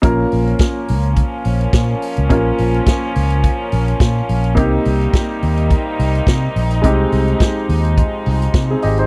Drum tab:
HH |x-oxx-oxx-oxx-ox|x-oxx-oxx-oxx-ox|x-oxx-oxx-oxx-ox|x-oxx-oxx-oxx-ox|
SD |----o-------o---|----o-------o---|----o-------o---|----o-------o---|
BD |o---o---o---o---|o---o---o---o---|o---o---o---o---|o---o---o---o---|